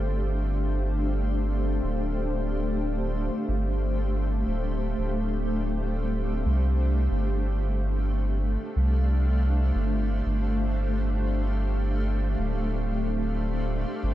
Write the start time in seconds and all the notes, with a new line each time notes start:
Already playing: G1 A3 D4 G4 C5 F5
1.83 D1 A3
3.48 G1
4.47 D1
4.98 D1
6.45 C2
7.11 G1
7.18 D4
7.25 F5
7.60 G4 C5
8.76 C2
9.75 G1
10.26 G1
12.38 D1
14.03 G1